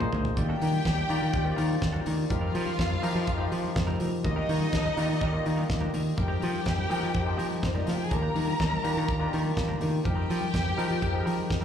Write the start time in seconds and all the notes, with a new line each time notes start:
Already playing: A#2 A#3 D#4 G#4 C5
0.00 A#3 D#4 G#4 C5, mid tom, muted conga, high conga, low conga
0.13 D2 A#3 D#4 G#4 C5, floor tom, low conga
0.25 muted clean electric guitar stroke, floor tom
0.36 D#2 D#3 A#3 F4 G4 D5 G5, muted clean electric guitar stroke, kick, closed hi-hat, low conga
0.49 A#3 D4 G4 A#4
0.60 D#3 A#3 D4 G4 A#4, open hi-hat, high conga
0.72 muted clean electric guitar stroke, high conga
0.85 D#2, muted clean electric guitar stroke, kick, snare, closed hi-hat, muted conga
0.98 muted clean electric guitar stroke, high conga
1.08 D#3 A#3 D4 F4 G4 A#4 D5, open hi-hat
1.21 D#3 A#3 D4 G4 A#4
1.33 D#2, kick, closed hi-hat
1.44 D#3 A#3 F4 G4 C5, muted clean electric guitar stroke, muted conga
1.51 D5
1.56 D#3 A#3 D4 G4 A#4, open hi-hat
1.69 muted clean electric guitar stroke, high conga
1.81 D#2, muted clean electric guitar stroke, kick, snare, closed hi-hat
1.93 A#3 D4 G4 A#4, high conga, low conga
2.05 D#3 A#3 D4 G4 A#4, open hi-hat, low conga
2.29 F2 F3 C4 D#4 F4 G4 A#4 F5, muted clean electric guitar stroke, kick, closed hi-hat, muted conga, low conga
2.41 G3 C4 D#4 A#4, muted conga
2.52 F3 G3 C4 D#4 A#4, open hi-hat, high conga
2.65 muted clean electric guitar stroke, high conga
2.78 F2, muted clean electric guitar stroke, kick, snare, closed hi-hat
2.90 muted clean electric guitar stroke, high conga
3.02 F3 G3 C4 D#4 G4 A#4, open hi-hat
3.14 F3 G3 C4 D#4 A#4
3.27 F2, kick, closed hi-hat, muted conga
3.37 F3 G3 C4 D#4 G4 A#4 C5
3.52 F3, open hi-hat
3.62 muted clean electric guitar stroke, high conga
3.75 F2, muted clean electric guitar stroke, kick, snare, closed hi-hat
3.87 G3 C4 D#4 A#4, high conga, low conga
4.00 F3 G3 C4 D#4 A#4, open hi-hat, low conga
4.24 D#2 D#3 A#3 D#4 F4 F#4 D#5, muted clean electric guitar stroke, kick, closed hi-hat, low conga
4.31 G4
4.35 A#3 D4 G4 A#4, muted conga
4.47 D#3 A#3 D4 G4 A#4, open hi-hat, high conga
4.60 high conga
4.73 D#2, muted clean electric guitar stroke, kick, snare, closed hi-hat
4.85 muted clean electric guitar stroke, muted conga, high conga
4.96 D#3 A#3 D4 F4 G4 A#4 D5, open hi-hat
5.09 D#3 A#3 D4 G4 A#4
5.21 D#2 A#3 D4 G4 A#4, kick, closed hi-hat, muted conga
5.32 D#3 A#3 F4 G4 D#5, muted clean electric guitar stroke
5.45 D#3, muted clean electric guitar stroke, open hi-hat
5.57 A#3 D4 G4 A#4, high conga
5.70 D#2, kick, snare, closed hi-hat
5.81 A#3 D4 G4 A#4, muted conga, high conga, low conga
5.93 D#3 A#3 D4 G4 A#4, open hi-hat, low conga
6.04 muted clean electric guitar stroke
6.17 F2 F3 C4 D#4 G4 A#4 G5, muted clean electric guitar stroke, kick, closed hi-hat, muted conga, low conga
6.28 A#3 D#4 G4 A#4, muted conga
6.40 F3 A#3 D#4 G4 A#4, open hi-hat, high conga
6.53 muted clean electric guitar stroke, high conga
6.65 F2, muted clean electric guitar stroke, kick, snare, closed hi-hat
6.78 muted clean electric guitar stroke, muted conga, high conga
6.89 F3 A#3 C4 D#4 G4 A#4, open hi-hat
7.02 F3 A#3 D#4 G4 A#4
7.14 F2, kick, closed hi-hat, muted conga
7.25 F3 C4 D#4 G4 C5, muted clean electric guitar stroke
7.37 F3 A#3 D#4 G4 A#4, open hi-hat
7.50 muted clean electric guitar stroke, high conga
7.62 F2 C4 C5, muted clean electric guitar stroke, kick, snare, closed hi-hat, muted conga
7.71 D4 A#4 D5
7.75 A#3 D#4 G4, muted conga, high conga, low conga
7.79 D#5
7.87 F3 A#3 D#4 F4 G4 A#4 F5, snare, open hi-hat, low conga
7.95 G4 G5, muted clean electric guitar stroke
8.04 G#4 G#5
8.10 D#2 D#3 A#3 D4 F4 G4 A#4 A#5, muted clean electric guitar stroke, kick, closed hi-hat, low conga
8.22 A#3 D4 G4 A#4, muted conga
8.34 D#3 A#3 D4 G4 A#4, open hi-hat, high conga
8.47 muted clean electric guitar stroke, high conga
8.59 D#2, muted clean electric guitar stroke, kick, snare, closed hi-hat
8.71 muted clean electric guitar stroke, muted conga, high conga
8.83 D#3 A#3 D4 F4 G4 A#4, open hi-hat
8.95 D#3 A#3 D4 G4 A#4
9.08 D#2, muted clean electric guitar stroke, kick, closed hi-hat, muted conga
9.19 D#3 A#3 D4 F4 G4 A#4
9.32 D#3 A#3 D4 G4 A#4, open hi-hat
9.45 high conga
9.57 D#2, muted clean electric guitar stroke, kick, snare, closed hi-hat
9.68 A#3 D4 G4 A#4, muted conga, high conga, low conga
9.80 D#3 A#3 D4 G4 A#4, open hi-hat, low conga
10.04 F2 F3 C4 D#4 G4 A#4 G5, muted clean electric guitar stroke, kick, closed hi-hat, muted conga, low conga
10.15 G3 C4 D#4 A#4
10.28 F3 G3 C4 D#4 A#4, open hi-hat, high conga
10.41 high conga
10.54 F2, muted clean electric guitar stroke, kick, snare, closed hi-hat
10.65 muted clean electric guitar stroke, high conga
10.76 F3 G3 C4 D#4 G4 A#4, open hi-hat
10.89 F3 G3 C4 D#4 A#4
11.02 F2, kick, closed hi-hat, muted conga
11.13 F3 C4 D#4 G4 G#4, muted clean electric guitar stroke, muted conga
11.20 A#4
11.25 F3 G3 C4 D#4 A#4, open hi-hat
11.37 muted clean electric guitar stroke, high conga
11.49 F2, muted clean electric guitar stroke, kick, snare, closed hi-hat
11.61 D#4 A#4